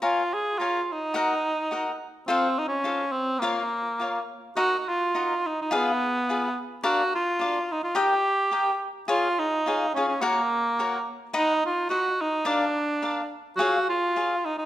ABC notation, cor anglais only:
X:1
M:2/4
L:1/16
Q:"Swing" 1/4=106
K:Bbm
V:1 name="Cor anglais"
F2 A2 F3/2 F/2 E2- | E6 z2 | C2 E D3 C2 | B,6 z2 |
[K:Ebm] G3/2 G/2 F4 E E | C6 z2 | G2 F4 E F | =G6 z2 |
F2 E4 D D | B,6 z2 | ^D2 F2 ^F2 D2 | =D6 z2 |
G2 F4 E E |]